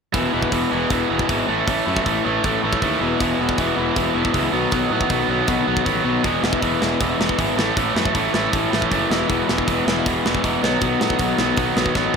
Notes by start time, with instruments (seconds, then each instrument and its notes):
0.13 picked electric bass E1, overdriven electric guitar E2 B2, distorted electric guitar E3 G#3 B3 E4, kick, open hi-hat
0.32 picked electric bass E1, overdriven electric guitar E2 B2, distorted electric guitar E3 G#3 B3 E4
0.42 kick
0.51 picked electric bass E1, overdriven electric guitar E2 B2, distorted electric guitar E3 G#3 B3 E4, kick, open hi-hat
0.71 picked electric bass E1, overdriven electric guitar E2 B2, distorted electric guitar E3 G#3 B3 E4
0.89 picked electric bass E1, overdriven electric guitar E2 B2, distorted electric guitar E3 G#3 B3 E4, kick, open hi-hat
1.09 picked electric bass E1, overdriven electric guitar E2 B2, distorted electric guitar E3 G#3 B3 E4
1.19 kick
1.28 picked electric bass G#1, overdriven electric guitar E2 B2, distorted electric guitar E3 G#3 B3 E4, kick, open hi-hat
1.49 picked electric bass A1, distorted electric guitar A2 E3 A3 C#4 E4
1.67 picked electric bass A1, distorted electric guitar A2 E3 A3 C#4 E4, kick, open hi-hat
1.87 picked electric bass F#2, distorted electric guitar A2 E3 A3 C#4 E4
1.97 kick
2.06 picked electric bass A1, distorted electric guitar A2 E3 A3 C#4 E4, kick, open hi-hat
2.25 picked electric bass A1, distorted electric guitar A2 E3 A3 C#4 E4
2.44 picked electric bass A1, distorted electric guitar A2 E3 A3 C#4 E4, kick, open hi-hat
2.64 picked electric bass A1, distorted electric guitar A2 E3 A3 C#4 E4
2.73 kick
2.82 picked electric bass D#2, distorted electric guitar A2 E3 A3 C#4 E4, kick, open hi-hat
3.01 picked electric bass E1, overdriven electric guitar E2 B2, distorted electric guitar E3 G#3 B3 E4
3.20 picked electric bass E1, overdriven electric guitar E2 B2, distorted electric guitar E3 G#3 B3 E4, kick, open hi-hat
3.39 picked electric bass E1, overdriven electric guitar E2 B2, distorted electric guitar E3 G#3 B3 E4
3.49 kick
3.58 picked electric bass E1, overdriven electric guitar E2 B2, distorted electric guitar E3 G#3 B3 E4, kick, open hi-hat
3.77 picked electric bass E1, overdriven electric guitar E2 B2, distorted electric guitar E3 G#3 B3 E4
3.96 picked electric bass E1, overdriven electric guitar E2 B2, distorted electric guitar E3 G#3 B3 E4, kick, open hi-hat
4.14 picked electric bass E1, overdriven electric guitar E2 B2, distorted electric guitar E3 G#3 B3 E4
4.25 kick
4.33 picked electric bass C#2, overdriven electric guitar E2 B2, distorted electric guitar E3 G#3 B3 E4, kick, open hi-hat
4.53 picked electric bass B1, distorted electric guitar B2 D#3 F#3 B3 D#4
4.71 picked electric bass B1, distorted electric guitar B2 D#3 F#3 B3 D#4, kick, open hi-hat
4.91 picked electric bass A2, distorted electric guitar B2 D#3 F#3 B3 D#4
5.01 kick
5.10 picked electric bass B1, distorted electric guitar B2 D#3 F#3 B3 D#4, kick, open hi-hat
5.28 picked electric bass B1, distorted electric guitar B2 D#3 F#3 B3 D#4
5.47 picked electric bass B1, distorted electric guitar B2 D#3 F#3 B3 D#4, kick, open hi-hat
5.66 picked electric bass B1, distorted electric guitar B2 D#3 F#3 B3 D#4
5.77 kick
5.85 picked electric bass A1, distorted electric guitar B2 D#3 F#3 B3 D#4, kick, open hi-hat
6.04 picked electric bass B1, distorted electric guitar B2 D#3 F#3 B3 D#4
6.23 picked electric bass E1, overdriven electric guitar E2 B2, distorted electric guitar E3 G#3 B3 E4, kick, open hi-hat
6.42 picked electric bass E1, overdriven electric guitar E2 B2, distorted electric guitar E3 G#3 B3 E4, snare
6.53 kick
6.61 picked electric bass E1, overdriven electric guitar E2 B2, distorted electric guitar E3 G#3 B3 E4, kick, open hi-hat
6.80 picked electric bass E1, overdriven electric guitar E2 B2, distorted electric guitar E3 G#3 B3 E4, snare
7.00 picked electric bass E1, overdriven electric guitar E2 B2, distorted electric guitar E3 G#3 B3 E4, kick, open hi-hat
7.19 picked electric bass E1, overdriven electric guitar E2 B2, distorted electric guitar E3 G#3 B3 E4, snare
7.29 kick
7.38 picked electric bass G#1, overdriven electric guitar E2 B2, distorted electric guitar E3 G#3 B3 E4, kick, open hi-hat
7.57 picked electric bass A1, distorted electric guitar A2 E3 A3 C#4 E4, snare
7.77 picked electric bass A1, distorted electric guitar A2 E3 A3 C#4 E4, kick, open hi-hat
7.95 picked electric bass F#2, distorted electric guitar A2 E3 A3 C#4 E4, snare
8.05 kick
8.15 picked electric bass A1, distorted electric guitar A2 E3 A3 C#4 E4, kick, open hi-hat
8.34 picked electric bass A1, distorted electric guitar A2 E3 A3 C#4 E4, snare
8.53 picked electric bass A1, distorted electric guitar A2 E3 A3 C#4 E4, kick, open hi-hat
8.73 picked electric bass A1, distorted electric guitar A2 E3 A3 C#4 E4, snare
8.82 kick
8.92 picked electric bass F#1, distorted electric guitar A2 E3 A3 C#4 E4, kick, open hi-hat
9.09 picked electric bass E1, overdriven electric guitar E2 B2, distorted electric guitar E3 G#3 B3, snare
9.13 distorted electric guitar E4
9.27 picked electric bass E1, overdriven electric guitar E2 B2, distorted electric guitar E3 G#3 B3 E4, kick, open hi-hat
9.47 picked electric bass E1, overdriven electric guitar E2 B2, distorted electric guitar E3 G#3 B3 E4, snare
9.58 kick
9.66 picked electric bass E1, overdriven electric guitar E2 B2, distorted electric guitar E3 G#3 B3, kick, open hi-hat
9.70 distorted electric guitar E4
9.86 picked electric bass E1, overdriven electric guitar E2 B2, distorted electric guitar E3 G#3 B3 E4, snare
10.05 picked electric bass E1, overdriven electric guitar E2 B2, distorted electric guitar E3 G#3 B3 E4, kick, open hi-hat
10.24 picked electric bass E1, overdriven electric guitar E2 B2, distorted electric guitar E3 G#3 B3 E4, snare
10.35 kick
10.43 picked electric bass E1, overdriven electric guitar E2 B2, distorted electric guitar E3 G#3 B3 E4, kick, open hi-hat
10.62 picked electric bass B1, distorted electric guitar B2 D#3 F#3 B3 D#4, snare
10.81 picked electric bass B1, distorted electric guitar B2 D#3 F#3 B3 D#4, kick, open hi-hat
11.01 picked electric bass A2, distorted electric guitar B2 D#3 F#3 B3 D#4, snare
11.10 kick
11.19 picked electric bass B1, distorted electric guitar B2 D#3 F#3 B3 D#4, kick, open hi-hat
11.37 picked electric bass B1, distorted electric guitar B2 D#3 F#3 B3 D#4, snare
11.57 picked electric bass B1, distorted electric guitar B2 D#3 F#3 B3 D#4, kick, open hi-hat
11.76 picked electric bass B1, distorted electric guitar B2 D#3 F#3 B3 D#4, snare
11.86 kick
11.94 picked electric bass A1, distorted electric guitar B2 D#3 F#3 B3 D#4, kick, snare